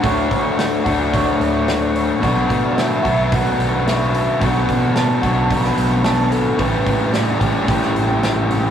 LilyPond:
<<
  \new Staff \with { instrumentName = "Soft synth lead" } { \time 4/4 \key b \minor \tempo 4 = 110 fis''4 d''2~ d''8 cis''8 | d''4 e''4 fis''4 e''8 e''8 | fis''4 a''4 b''4 a''8 a'8 | b'4 d''4 g''2 | }
  \new Staff \with { instrumentName = "Overdriven electric guitar" } { \time 4/4 \key b \minor <d fis a d' fis'>4. <d fis a d' fis'>2~ <d fis a d' fis'>8 | <b, fis b d' fis'>4. <b, fis b d' fis'>2~ <b, fis b d' fis'>8 | <b, fis b d' fis'>4. <b, fis b d' fis'>2~ <b, fis b d' fis'>8 | <a, e g cis' g'>4. <a, e g cis' g'>2~ <a, e g cis' g'>8 | }
  \new Staff \with { instrumentName = "Clean electric guitar" } { \time 4/4 \key b \minor <d fis a d' fis' cis''>2 <d fis a d' fis' cis''>2 | <b, fis a d' fis'>2 <b, fis a d' fis'>2 | <b, fis a d' fis'>2 <b, fis a d' fis'>2 | <a, d g e'>2 <a, d g e'>2 | }
  \new Staff \with { instrumentName = "Picked electric bass" } { \clef bass \time 4/4 \key b \minor d,8 d4 d,4 d,4. | b,,8 b,4 b,,4 b,,4. | b,,8 b,4 b,,4 b,,4. | a,,8 a,4 a,,4 a,,4. | }
  \new DrumStaff \with { instrumentName = "Drums" } \drummode { \time 4/4 <hho bd>8 <hho bd>8 <hho sn>8 <hho bd>8 <hho bd>8 hho8 <hho sn>8 hho8 | <hho bd>8 <hho bd>8 <hho sn>8 <hho bd>8 <hho bd>8 hho8 <hho sn>8 hho8 | <hho bd>8 <hho bd>8 <hho sn>8 <hho bd>8 <hho bd>16 sn16 hho8 <hho sn>8 hho8 | <hho bd>8 <hho bd>8 <hho sn>8 <hho bd>8 <hho bd>16 sn16 hho8 <hho sn>8 hho8 | }
>>